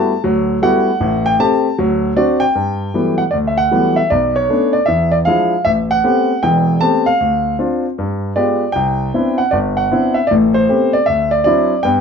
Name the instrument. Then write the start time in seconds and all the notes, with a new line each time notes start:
grand piano
Already playing: G3 A3 B3 E4 F#4 A5
0.24 D2 F#3
0.62 G3 A3 B3 E4 F#4 F#5
1.00 A1 A2
1.26 G5
1.39 A3 C4 G4 A5
1.78 D2 F#3
2.16 C4 D4 F#4 D5
2.40 G5
2.55 G2
2.94 E3 F#3 G3 A3 B3
3.18 F#5
3.31 D2 D5
3.47 E5
3.58 F#5
3.71 E3 F#3 G3 A3 B3
3.96 E5
4.10 B1 D5
4.36 C#5
4.49 A3 B3 C#4 D4
4.73 D5
4.86 E2 E5
5.12 D5
5.25 F3 G#3 D4 E4 F5
5.65 A1 E5
5.91 F#5
6.04 A3 B3 C4 G4
6.43 E1 E2 G5
6.81 A3 B3 C4 G4 A5
7.06 F5
7.20 D2
7.59 C4 D4 F4
7.98 G2
8.36 G#3 B3 F4 G4 D5
8.72 C2 G5
9.14 B3 C4 D4 E4
9.38 F#5
9.51 G1 D5
9.77 F#5
9.91 B3 C4 D4 E4
10.14 E5
10.27 A1 A2 D5
10.54 C5
10.69 A3 B3 C4 G4
10.93 D5
11.06 D2 E5
11.31 D5
11.44 F#3 C4 D4 E4 D5
11.83 G2 B3 G5